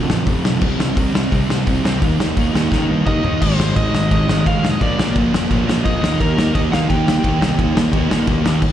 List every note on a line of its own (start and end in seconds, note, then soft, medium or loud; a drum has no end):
0.00 0.25 F2 loud
0.00 0.25 C3 loud
0.00 0.26 F3 loud
0.00 0.61 C4 medium
0.08 0.21 A1 medium
0.08 snare loud
0.26 0.39 F1 medium
0.26 0.42 F2 medium
0.26 0.43 C3 medium
0.26 0.44 F3 medium
0.26 kick loud
0.26 open hi-hat medium
0.43 0.56 B1 medium
0.43 0.60 F2 medium
0.43 0.59 C3 medium
0.43 0.61 F3 medium
0.43 snare loud
0.60 0.74 C2 medium
0.60 0.95 C3 loud
0.60 0.96 G3 medium
0.60 0.96 C4 loud
0.60 kick loud
0.60 crash medium
0.78 0.91 C2 medium
0.78 snare loud
0.96 1.09 C2 medium
0.96 1.11 C3 medium
0.96 1.13 G3 loud
0.96 1.13 C4 medium
0.96 kick loud
0.96 open hi-hat medium
1.12 1.26 C2 medium
1.12 1.29 C3 medium
1.12 1.30 G3 medium
1.12 1.31 C4 medium
1.12 snare loud
1.31 1.44 C2 medium
1.31 1.64 C3 loud
1.31 1.65 G3 loud
1.31 1.66 C4 medium
1.31 kick loud
1.31 open hi-hat medium
1.49 1.61 C3 medium
1.49 snare loud
1.66 1.79 C2 medium
1.66 1.82 C3 medium
1.66 1.83 G3 medium
1.66 1.84 C4 medium
1.66 kick loud
1.66 open hi-hat medium
1.84 2.02 C2 medium
1.84 2.01 C3 medium
1.84 2.01 G3 medium
1.84 2.01 C4 medium
1.84 snare loud
2.01 2.14 D#2 medium
2.01 2.35 D#3 loud
2.01 2.36 A#3 medium
2.01 2.36 D#4 loud
2.01 kick loud
2.01 open hi-hat medium
2.19 2.31 D#2 medium
2.19 snare loud
2.36 2.49 D#2 medium
2.36 2.53 D#3 medium
2.36 2.54 A#3 medium
2.36 2.55 D#4 loud
2.36 kick loud
2.36 open hi-hat medium
2.55 2.66 D#2 medium
2.55 2.71 D#3 medium
2.55 2.72 A#3 medium
2.55 2.72 D#4 medium
2.55 snare loud
2.71 2.83 C#2 medium
2.71 3.06 D#3 medium
2.71 3.06 A#3 loud
2.71 3.07 D#4 loud
2.71 kick loud
2.71 snare medium
2.89 3.01 G2 medium
3.06 3.18 D#2 medium
3.06 3.23 D#3 medium
3.06 3.24 A#3 medium
3.06 3.24 D#4 medium
3.06 3.42 D#5 medium
3.06 kick loud
3.06 mid tom medium
3.24 3.36 D#2 medium
3.24 3.41 D#3 medium
3.24 3.41 A#3 medium
3.24 3.41 D#4 medium
3.24 floor tom medium
3.41 3.54 G#1 medium
3.41 3.58 G#2 medium
3.41 3.58 D#3 medium
3.41 3.59 G#3 loud
3.41 3.76 C5 medium
3.41 kick loud
3.41 crash loud
3.41 crash medium
3.58 3.72 G#1 medium
3.58 3.75 G#2 medium
3.58 3.75 D#3 medium
3.58 3.76 G#3 medium
3.58 snare loud
3.76 3.89 G#1 medium
3.76 3.92 G#2 medium
3.76 3.93 D#3 medium
3.76 3.94 G#3 medium
3.76 4.11 D#5 medium
3.76 kick loud
3.76 crash medium
3.93 4.07 G#1 medium
3.93 4.10 G#2 medium
3.93 4.11 D#3 medium
3.93 4.11 G#3 medium
3.93 snare loud
4.11 4.24 G#1 medium
4.11 4.27 G#2 loud
4.11 4.27 D#3 loud
4.11 4.28 G#3 loud
4.11 4.47 D#5 loud
4.11 kick loud
4.11 crash medium
4.28 4.41 G#1 medium
4.28 4.45 G#2 medium
4.28 4.46 D#3 medium
4.28 4.46 G#3 loud
4.28 snare loud
4.46 4.59 G#1 medium
4.46 4.62 G#2 medium
4.46 4.63 D#3 medium
4.46 4.64 G#3 medium
4.46 4.70 F5 loud
4.46 kick loud
4.46 crash medium
4.62 4.76 F1 medium
4.62 4.80 G#2 medium
4.62 4.80 D#3 medium
4.62 4.81 G#3 medium
4.62 snare loud
4.70 4.82 D#5 medium
4.81 4.94 A#1 medium
4.81 4.97 A#2 medium
4.81 4.98 F3 loud
4.81 4.99 A#3 loud
4.81 5.14 D5 medium
4.81 kick loud
4.81 crash medium
4.98 5.11 A#1 loud
4.98 5.14 A#2 medium
4.98 5.14 F3 medium
4.98 5.16 A#3 medium
4.98 snare loud
5.15 5.29 A#1 medium
5.15 5.31 A#2 medium
5.15 5.32 F3 medium
5.15 5.34 A#3 medium
5.15 kick loud
5.15 crash medium
5.32 5.46 F2 medium
5.32 5.48 A#2 medium
5.32 5.49 F3 medium
5.32 5.50 A#3 medium
5.32 snare loud
5.49 5.63 A#1 medium
5.49 5.66 A#2 medium
5.49 5.67 F3 loud
5.49 5.68 A#3 loud
5.49 kick loud
5.49 crash medium
5.66 5.80 A#1 medium
5.66 5.83 A#2 medium
5.66 5.84 F3 medium
5.66 5.86 A#3 medium
5.66 snare loud
5.85 5.98 A#1 medium
5.85 6.01 A#2 medium
5.85 6.02 F3 medium
5.85 6.03 A#3 loud
5.85 6.18 D#5 loud
5.85 kick loud
5.85 crash medium
6.02 6.15 D#2 medium
6.02 6.20 D#3 medium
6.02 6.21 A#3 loud
6.02 6.21 D#4 medium
6.02 snare loud
6.20 6.33 D#2 medium
6.20 6.37 D#3 medium
6.20 6.38 A#3 loud
6.20 6.39 D#4 loud
6.20 6.56 A#4 loud
6.20 kick loud
6.20 crash medium
6.37 6.50 D#2 medium
6.37 6.55 D#3 medium
6.37 6.55 A#3 medium
6.37 6.56 D#4 loud
6.37 snare loud
6.55 6.68 D#2 medium
6.55 6.72 D#3 medium
6.55 6.73 A#3 medium
6.55 6.74 D#4 loud
6.55 6.60 D#5 medium
6.55 kick loud
6.55 crash medium
6.71 6.84 D#2 medium
6.71 6.89 D#3 medium
6.71 6.90 A#3 medium
6.71 6.91 D#4 loud
6.71 6.89 F5 loud
6.71 snare loud
6.89 7.02 D#2 medium
6.89 7.06 D#3 medium
6.89 7.07 A#3 loud
6.89 7.08 D#4 medium
6.89 8.62 G5 loud
6.89 kick loud
6.89 crash medium
7.06 7.19 D#2 medium
7.06 7.23 D#3 medium
7.06 7.24 A#3 medium
7.06 7.24 D#4 loud
7.06 snare loud
7.24 7.37 D#2 medium
7.24 7.40 D#3 medium
7.24 7.41 A#3 medium
7.24 7.42 D#4 medium
7.24 kick loud
7.24 crash medium
7.40 7.53 C2 medium
7.40 7.57 D#3 medium
7.40 7.58 A#3 medium
7.40 7.59 D#4 loud
7.40 snare loud
7.58 7.71 D#2 medium
7.58 7.75 D#3 loud
7.58 7.76 A#3 loud
7.58 7.76 D#4 medium
7.58 kick loud
7.58 crash medium
7.75 7.88 D#2 medium
7.75 7.92 D#3 medium
7.75 7.93 A#3 medium
7.75 7.93 D#4 medium
7.75 snare loud
7.93 8.06 D#2 medium
7.93 8.09 D#3 medium
7.93 8.09 A#3 medium
7.93 8.10 D#4 medium
7.93 kick loud
7.93 crash medium
8.10 8.23 A#2 medium
8.10 8.26 D#3 medium
8.10 8.27 A#3 medium
8.10 8.28 D#4 medium
8.10 snare loud
8.27 8.40 D#2 medium
8.27 8.44 D#3 medium
8.27 8.45 A#3 loud
8.27 8.45 D#4 loud
8.27 kick loud
8.27 crash medium
8.45 8.58 D#2 medium
8.45 8.62 D#3 medium
8.45 8.62 A#3 medium
8.45 8.62 D#4 medium
8.45 snare loud
8.62 kick loud
8.62 crash medium